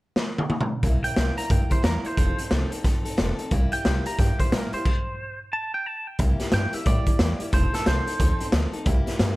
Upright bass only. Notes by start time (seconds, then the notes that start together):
0.83 C2
1.04 muted upright bass stroke
1.17 C2
1.38 muted upright bass stroke
1.50 G2
1.71 muted upright bass stroke
1.84 E2
2.05 muted upright bass stroke
2.17 F1
2.51 C2
3.06 F1
3.19 F1
3.51 C2
3.73 muted upright bass stroke
3.86 C2
4.19 G2
4.52 A#2
4.73 muted upright bass stroke
6.19 C2
6.40 muted upright bass stroke
6.53 G2
6.74 muted upright bass stroke
6.86 A2
7.20 E2
7.40 muted upright bass stroke
7.53 F1
7.73 muted upright bass stroke
7.86 C2
8.07 muted upright bass stroke
8.20 D2
8.40 muted upright bass stroke
8.52 D2
8.73 muted upright bass stroke
8.86 C2
9.19 G2